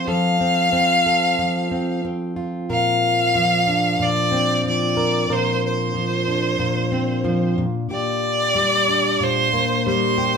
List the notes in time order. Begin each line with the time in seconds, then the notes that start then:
Already playing: C4 F4
0.08 F3 A4 F5
0.41 C4
0.73 C4
1.06 A4
1.39 F3
1.71 C4
2.05 C4
2.36 F4
2.69 A#2 A#4 F5
3.35 F3
3.67 D4
4.00 A#2 D5
4.32 C4
4.65 F3 D5
4.97 A#4
5.30 A#2 A#4 C5
5.66 C5
5.94 F3
6.28 D4
6.59 A#2
6.92 C4
7.24 F3
7.58 A#2
7.90 A#2 G4 D5
8.55 G3
8.88 D4
9.20 A#2 C5
9.54 A#3
9.87 G3 C5
10.18 G4